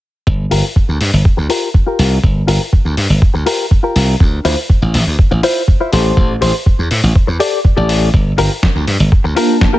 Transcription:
0.27 slap bass G1, kick
0.51 slap bass G1, clean electric guitar F4 G4 A#4, open hi-hat
0.76 muted clean electric guitar stroke, kick
0.89 slap bass D2
1.01 slap bass G2, open hi-hat
1.13 slap bass G1
1.25 muted clean electric guitar stroke, kick
1.37 slap bass D2, muted clean electric guitar stroke
1.49 clean electric guitar F4 G4 A#4, open hi-hat
1.74 kick
1.86 clean electric guitar F4 G4 A#4
1.99 slap bass C2, open hi-hat
2.24 slap bass G1, kick
2.47 slap bass G1, clean electric guitar F4 G4 A#4, open hi-hat
2.73 muted clean electric guitar stroke, kick
2.85 slap bass D2
2.97 slap bass G2, open hi-hat
3.10 slap bass G1
3.22 muted clean electric guitar stroke, kick
3.34 slap bass D2, muted clean electric guitar stroke
3.46 clean electric guitar F4 G4 A#4, open hi-hat
3.71 kick
3.83 clean electric guitar F4 G4 A#4
3.96 slap bass C2, open hi-hat
4.20 slap bass D2, kick
4.45 slap bass D2, clean electric guitar E4 F4 C5, open hi-hat
4.69 muted clean electric guitar stroke, kick
4.82 slap bass A1
4.94 slap bass A1, open hi-hat
5.07 slap bass D2
5.19 muted clean electric guitar stroke, muted slap bass stroke, kick
5.31 slap bass A1, muted clean electric guitar stroke
5.43 clean electric guitar E4 F4 C5, open hi-hat
5.68 kick
5.80 clean electric guitar E4 F4 C5
5.92 slap bass A1, clean electric guitar G4 A4 C5, open hi-hat
6.17 slap bass A1, kick
6.41 slap bass A1, clean electric guitar G4 A4 C5, open hi-hat
6.66 muted clean electric guitar stroke, kick
6.79 slap bass E2
6.91 slap bass A2, open hi-hat
7.03 slap bass A1
7.15 muted clean electric guitar stroke, kick
7.27 slap bass E2, muted clean electric guitar stroke
7.40 clean electric guitar G4 A4 D5, open hi-hat
7.65 kick
7.77 slap bass A1, clean electric guitar G4 A4 D5
7.89 open hi-hat
8.14 slap bass G1, kick
8.38 slap bass G1, clean electric guitar F4 G4 A#4, open hi-hat
8.62 muted clean electric guitar stroke, kick, snare
8.76 slap bass D2
8.87 slap bass G2, open hi-hat
9.00 slap bass G1
9.12 muted clean electric guitar stroke, kick
9.24 slap bass D2, muted clean electric guitar stroke
9.36 analog polysynth A#3 D4 F4 A5, clean electric guitar F4 G4 A#4, open hi-hat
9.61 kick, snare
9.73 analog polysynth A#3 D4 F4 A5, clean electric guitar F4 G4 A#4

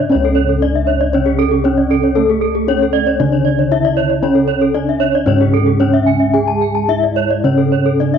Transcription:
Already playing: bronze metallophone C#3 D4, kettle gongs C#3
0.00 bronze metallophone D5
0.10 bronze metallophone C#4 C#5, kettle gongs C#4
0.15 kettle gongs C#2
0.24 bronze metallophone A4
0.35 bronze metallophone C#5
0.49 bronze metallophone A4
0.62 kettle gongs D4, bronze metallophone D4 D5
0.75 bronze metallophone E5
0.87 bronze metallophone C#5
1.01 bronze metallophone D5
1.13 bronze metallophone C#3 C#4 C#5
1.26 bronze metallophone G#4
1.39 bronze metallophone A4
1.51 bronze metallophone G#4
1.64 bronze metallophone C#4 C#5, kettle gongs D4
1.78 bronze metallophone D5
1.91 bronze metallophone A4
2.03 bronze metallophone C#5
2.15 bronze metallophone A3 A4, kettle gongs A4
2.30 bronze metallophone G#4
2.41 bronze metallophone A4
2.55 bronze metallophone G#4
2.67 bronze metallophone C#4 C#5, kettle gongs D4
2.82 bronze metallophone A4
2.93 bronze metallophone D5
3.07 bronze metallophone C#5
3.20 kettle gongs C#3, bronze metallophone D3 D4 D5
3.32 bronze metallophone C#5
3.45 bronze metallophone D5
3.59 bronze metallophone C#5
3.71 kettle gongs D4, bronze metallophone E4 E5
3.85 bronze metallophone D5
3.97 bronze metallophone C#5
4.10 bronze metallophone D5
4.23 kettle gongs C#4, bronze metallophone C#4 C#5
4.35 bronze metallophone A4
4.48 bronze metallophone C#5
4.61 bronze metallophone A4
4.74 kettle gongs D4, bronze metallophone D4 D5
4.89 bronze metallophone E5
5.00 bronze metallophone C#5
5.15 bronze metallophone D5
5.26 kettle gongs G#2, bronze metallophone C#3 C#4 C#5
5.41 bronze metallophone G#4
5.53 bronze metallophone A4
5.66 bronze metallophone G#4
5.80 bronze metallophone C#4 C#5, kettle gongs D4
5.94 bronze metallophone E5
6.06 bronze metallophone G#5
6.20 bronze metallophone E5
6.34 kettle gongs G#4, bronze metallophone G#4 G#5
6.48 bronze metallophone A5
6.61 bronze metallophone G#5
6.75 bronze metallophone A5
6.88 kettle gongs D4, bronze metallophone E4 E5
7.03 bronze metallophone D5
7.16 bronze metallophone C#5
7.31 bronze metallophone D5
7.44 kettle gongs C#3, bronze metallophone C#3 C#4 C#5
7.58 bronze metallophone A4
7.72 bronze metallophone C#5
7.86 bronze metallophone A4
8.00 kettle gongs D4, bronze metallophone D4 D5
8.14 bronze metallophone E5

